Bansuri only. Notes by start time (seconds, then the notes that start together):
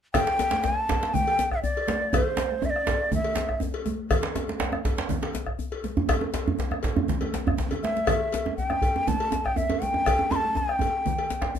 0.14 G5
0.63 A5
1.14 G5
1.53 E5
1.62 D5
2.15 C5
2.65 E5
2.70 D5
3.14 E5
7.83 E5
8.57 G5
9.08 A5
9.45 G5
9.57 E5
9.82 G5
10.31 C6
10.36 A5
10.57 G5